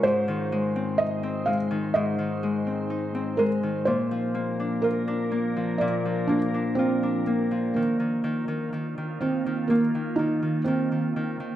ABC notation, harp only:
X:1
M:4/4
L:1/16
Q:1/4=62
K:Bbmix
V:1 name="Harp" clef=bass
A,, E, A, C E C A, E, A,, E, A, C E C A, E, | B,, F, B, D F D B, F, B,, F, B, D F D B, F, | E, E, E, E, E, E, E, E, B, E, E, E, E, E, E, E, |]